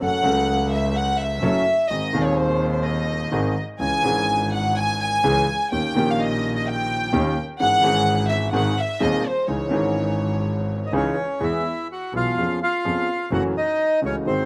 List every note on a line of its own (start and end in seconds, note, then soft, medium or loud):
0.00 0.21 F#1 medium
0.00 0.21 F#2 soft
0.00 0.21 F#3 soft
0.00 0.21 A3 soft
0.00 0.21 C#4 soft
0.00 0.21 A4 soft
0.00 0.68 F#5 medium
0.22 1.35 C#2 medium
0.22 1.36 C#2 medium
0.22 1.36 C#3 medium
0.22 1.35 F#3 medium
0.22 1.35 A3 medium
0.22 1.36 C#4 medium
0.22 1.37 A4 medium
0.72 0.95 E5 medium
0.96 1.19 F#5 medium
1.19 1.89 E5 medium
1.42 1.62 F#1 medium
1.42 1.62 F#2 medium
1.42 1.62 F#3 medium
1.42 1.62 A3 medium
1.42 1.62 C#4 medium
1.42 1.62 A4 medium
1.89 2.09 G#1 soft
1.89 2.10 G#1 soft
1.89 2.10 G#2 soft
1.89 2.10 D#3 soft
1.89 2.10 G#3 soft
1.89 2.10 C4 soft
1.89 2.10 G#4 soft
1.89 2.24 D#5 medium
2.13 3.27 D#1 medium
2.13 3.27 D#2 medium
2.13 3.26 D#3 medium
2.13 3.27 G#3 medium
2.13 3.27 C4 medium
2.13 3.28 G#4 medium
2.23 2.36 C#5 medium
2.35 2.70 C5 medium
2.71 2.83 C5 medium
2.83 3.56 D#5 medium
3.32 3.52 G#1 medium
3.32 3.53 G#1 medium
3.32 3.53 G#2 medium
3.32 3.52 D#3 medium
3.32 3.52 G#3 medium
3.32 3.53 C4 medium
3.32 3.53 G#4 medium
3.79 4.00 C#2 medium
3.79 4.00 C#2 soft
3.79 4.01 C#3 soft
3.79 4.00 E3 soft
3.79 4.00 G#3 soft
3.79 4.00 C#4 soft
3.79 4.01 G#4 soft
3.79 4.48 G#5 loud
4.02 5.18 G#1 medium
4.02 5.19 G#1 medium
4.02 5.18 G#2 medium
4.02 5.17 E3 medium
4.02 5.18 G#3 medium
4.02 5.19 C#4 medium
4.02 5.19 G#4 medium
4.52 4.77 F#5 medium
4.76 4.99 G#5 loud
5.00 5.67 G#5 medium
5.24 5.44 C#2 medium
5.24 5.44 C#3 medium
5.24 5.44 E3 medium
5.24 5.44 G#3 medium
5.24 5.44 C#4 medium
5.24 5.44 G#4 medium
5.72 5.92 D#2 medium
5.72 5.92 D#2 soft
5.72 5.92 D#3 soft
5.72 5.92 A#3 soft
5.72 5.92 C#4 soft
5.72 5.92 G4 soft
5.72 6.08 G5 medium
5.94 7.07 A#1 medium
5.94 7.08 A#1 medium
5.94 7.08 A#2 medium
5.94 7.07 D#3 medium
5.94 7.08 A#3 medium
5.94 7.08 C#4 medium
5.98 7.09 G4 medium
6.09 6.20 F5 medium
6.20 6.54 D#5 medium
6.55 6.66 D#5 medium
6.67 7.37 G5 medium
7.13 7.33 D#2 medium
7.13 7.33 D#3 medium
7.13 7.33 A#3 medium
7.13 7.33 C#4 medium
7.13 7.33 G4 medium
7.59 7.79 G#1 soft
7.59 7.80 G#1 medium
7.59 7.79 G#2 soft
7.59 7.80 E3 soft
7.59 7.79 G#3 soft
7.59 7.80 C#4 soft
7.59 7.80 G#4 medium
7.59 8.25 F#5 loud
7.81 8.50 G#1 medium
7.81 8.50 G#2 medium
7.81 8.49 E3 medium
7.81 8.49 G#3 medium
7.81 8.50 C#4 medium
7.86 8.51 G#4 medium
8.29 8.53 E5 medium
8.52 8.73 G#1 medium
8.52 8.74 G#1 medium
8.52 8.73 G#2 medium
8.52 8.73 D#3 medium
8.52 8.73 G#3 medium
8.52 8.73 C4 medium
8.52 8.73 G#4 medium
8.52 8.75 F#5 medium
8.78 9.01 E5 medium
9.00 9.20 D#1 medium
9.00 9.20 D#2 medium
9.00 9.21 D#2 medium
9.00 9.20 D#3 medium
9.00 9.20 G#3 medium
9.00 9.20 C4 medium
9.00 9.21 G#4 medium
9.00 9.25 D#5 medium
9.25 9.48 C5 medium
9.48 9.68 C#2 medium
9.48 9.68 C#2 soft
9.48 9.68 C#3 soft
9.48 9.67 E3 soft
9.48 9.68 C#4 soft
9.48 9.68 D#4 soft
9.48 9.68 G#4 soft
9.48 10.92 C#5 medium
9.69 10.86 G#1 medium
9.69 10.86 G#2 medium
9.69 10.85 E3 medium
9.69 10.85 C#4 medium
9.69 10.86 D#4 medium
9.73 10.87 G#4 medium
10.86 10.93 D#5 soft
10.91 11.12 C#2 medium
10.91 11.14 C#2 medium
10.91 11.13 C#3 medium
10.91 11.13 E3 medium
10.91 11.13 C#4 medium
10.91 11.39 C#4 medium
10.91 11.13 D#4 medium
10.91 11.14 G#4 medium
10.97 11.45 C#5 medium
11.40 11.61 E2 medium
11.40 11.61 E3 medium
11.40 11.61 G#3 soft
11.40 11.62 B3 medium
11.40 11.87 E4 medium
11.40 11.61 G#4 medium
11.40 11.88 E5 medium
11.92 12.13 F#4 medium
11.92 12.14 F#5 medium
12.13 12.33 B1 soft
12.13 12.34 B1 soft
12.13 12.34 B2 soft
12.13 12.33 E3 soft
12.13 12.34 G#3 soft
12.13 12.34 B3 soft
12.13 12.59 F4 soft
12.13 12.34 G#4 soft
12.13 12.60 F5 medium
12.37 12.57 F2 soft
12.37 12.58 F2 soft
12.37 12.58 F3 soft
12.37 12.58 B3 soft
12.37 12.58 C#4 soft
12.37 12.58 G#4 soft
12.62 13.29 F4 medium
12.62 13.29 F5 medium
12.85 13.05 F2 medium
12.85 13.05 F2 soft
12.85 13.05 F3 soft
12.85 13.05 B3 soft
12.85 13.05 C#4 soft
12.85 13.05 G#4 soft
13.31 13.51 F#1 medium
13.31 13.52 F#2 medium
13.31 13.52 E3 medium
13.31 13.52 F#3 medium
13.31 13.52 A3 soft
13.31 13.52 C#4 soft
13.31 13.52 F#4 medium
13.31 13.44 F#4 medium
13.31 13.43 F#5 medium
13.57 14.00 D#4 medium
13.57 14.00 D#5 medium
14.02 14.22 C#2 soft
14.02 14.22 C#2 medium
14.02 14.22 C#3 soft
14.02 14.22 E3 soft
14.02 14.22 A3 soft
14.02 14.22 C#4 soft
14.02 14.22 F#4 soft
14.06 14.16 C#4 soft
14.06 14.16 C#5 medium
14.25 14.45 G#1 soft
14.25 14.45 G#1 medium
14.25 14.45 G#2 soft
14.25 14.45 D#3 soft
14.25 14.45 G#3 soft
14.25 14.45 C4 soft
14.25 14.45 C4 medium
14.25 14.45 F#4 soft
14.25 14.45 C5 medium